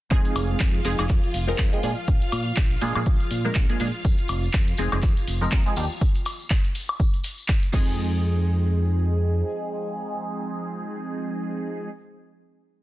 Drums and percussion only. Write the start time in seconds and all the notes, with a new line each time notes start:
0.11 kick, closed hi-hat
0.25 closed hi-hat
0.36 open hi-hat, high woodblock
0.60 kick, clap, closed hi-hat
0.74 closed hi-hat
0.85 open hi-hat
0.99 high woodblock
1.09 kick, clap, closed hi-hat
1.24 closed hi-hat
1.34 open hi-hat
1.58 kick, clap, closed hi-hat
1.73 closed hi-hat
1.83 open hi-hat
2.08 kick, closed hi-hat
2.22 closed hi-hat
2.32 open hi-hat, high woodblock
2.56 kick, clap, closed hi-hat
2.71 closed hi-hat
2.82 open hi-hat
2.95 high woodblock
3.06 kick, closed hi-hat
3.20 closed hi-hat
3.31 open hi-hat
3.55 kick, clap, closed hi-hat
3.69 closed hi-hat
3.80 open hi-hat
4.05 kick, closed hi-hat, tambourine
4.18 closed hi-hat, tambourine
4.28 open hi-hat, tambourine, high woodblock
4.43 tambourine
4.53 kick, clap, closed hi-hat, tambourine
4.67 closed hi-hat, tambourine
4.77 open hi-hat, tambourine
4.92 tambourine, high woodblock
5.02 kick, clap, closed hi-hat, tambourine
5.17 closed hi-hat, tambourine
5.28 open hi-hat, tambourine
5.42 tambourine
5.52 kick, clap, closed hi-hat, tambourine
5.66 closed hi-hat, tambourine
5.76 open hi-hat, tambourine
5.90 tambourine
6.01 kick, closed hi-hat, tambourine
6.14 closed hi-hat, tambourine
6.25 open hi-hat, tambourine, high woodblock
6.40 tambourine
6.50 kick, clap, closed hi-hat, tambourine
6.64 closed hi-hat, tambourine
6.75 open hi-hat, tambourine
6.88 tambourine, high woodblock
7.00 kick, closed hi-hat, tambourine
7.13 closed hi-hat, tambourine
7.24 open hi-hat, tambourine
7.38 tambourine
7.48 kick, clap, closed hi-hat
7.62 closed hi-hat, tambourine
7.73 kick, crash, tambourine
7.87 tambourine